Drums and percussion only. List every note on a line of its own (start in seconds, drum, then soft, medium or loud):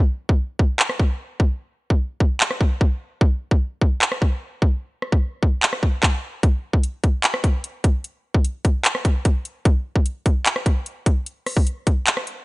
0.29 kick medium
0.59 kick medium
0.79 clap loud
0.89 cross-stick medium
1.00 kick medium
1.40 kick loud
1.90 kick medium
2.20 kick medium
2.40 clap loud
2.51 cross-stick medium
2.61 kick medium
2.81 kick loud
3.21 kick loud
3.51 kick medium
3.81 kick medium
4.02 clap loud
4.12 cross-stick medium
4.22 kick medium
4.62 kick loud
5.02 cross-stick medium
5.12 kick medium
5.43 kick medium
5.63 clap loud
5.73 cross-stick medium
5.83 kick medium
6.03 kick loud
6.03 clap loud
6.43 kick loud
6.43 closed hi-hat medium
6.73 kick medium
6.83 closed hi-hat medium
7.04 kick medium
7.04 closed hi-hat medium
7.24 clap loud
7.24 closed hi-hat medium
7.34 cross-stick loud
7.44 kick medium
7.44 closed hi-hat medium
7.64 closed hi-hat medium
7.84 kick loud
7.84 closed hi-hat medium
8.04 closed hi-hat medium
8.34 kick medium
8.45 closed hi-hat medium
8.65 kick medium
8.65 closed hi-hat medium
8.85 clap loud
8.85 closed hi-hat medium
8.95 cross-stick medium
9.05 kick medium
9.05 closed hi-hat medium
9.25 kick loud
9.25 closed hi-hat medium
9.45 closed hi-hat medium
9.65 kick loud
9.65 closed hi-hat medium
9.96 kick medium
10.06 closed hi-hat medium
10.26 kick medium
10.26 closed hi-hat medium
10.46 clap loud
10.46 closed hi-hat medium
10.56 cross-stick medium
10.66 kick medium
10.66 closed hi-hat medium
10.86 closed hi-hat medium
11.06 kick loud
11.06 closed hi-hat medium
11.26 closed hi-hat medium
11.46 cross-stick medium
11.46 open hi-hat medium
11.57 kick medium
11.67 closed hi-hat medium
11.87 kick medium
11.87 closed hi-hat medium
12.07 clap loud
12.07 closed hi-hat medium
12.17 cross-stick medium
12.27 closed hi-hat medium